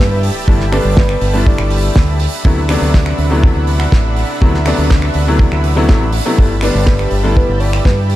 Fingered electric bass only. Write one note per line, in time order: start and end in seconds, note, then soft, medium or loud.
0.00 0.29 G2 medium
0.48 0.78 G1 loud
0.85 1.15 G1 loud
1.21 1.52 G1 medium
1.59 1.89 G1 loud
1.96 2.26 D2 medium
2.45 2.75 D2 loud
2.82 3.12 D2 loud
3.18 3.49 D2 medium
3.56 3.86 D2 loud
3.92 4.23 A1 loud
4.42 4.72 D2 loud
4.78 5.08 D2 loud
5.15 5.45 D2 medium
5.52 5.91 D2 medium
5.89 6.19 A1 medium
6.39 6.69 G1 loud
6.75 7.05 G1 loud
7.11 7.42 G1 medium
7.49 7.79 G1 medium
7.85 8.16 G2 medium